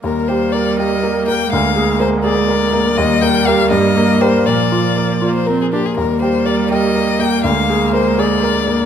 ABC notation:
X:1
M:6/8
L:1/16
Q:3/8=81
K:Eb
V:1 name="Violin"
B2 c2 d2 e4 g2 | f4 c2 d6 | e2 g2 f2 e4 c2 | d6- d c B A G A |
B2 c2 d2 e4 g2 | f4 c2 d6 |]
V:2 name="Grand piano"
E,,2 G2 B2 G2 B2 B,2 | D,,2 A2 B2 A2 B2 B,2 | E,,2 B,2 [GB]2 G,,2 B,2 [GB]2 | B,,2 F2 B2 F2 B2 B,2 |
E,,2 G2 B2 G2 B2 B,2 | D,,2 A2 B2 A2 B2 B,2 |]
V:3 name="Viola"
B,12- | B,12 | B,12- | B,6 B,2 C2 D2 |
B,12- | B,12 |]
V:4 name="Cello" clef=bass
G,12 | A,12 | G,12 | F,8- F,2 z2 |
G,12 | A,12 |]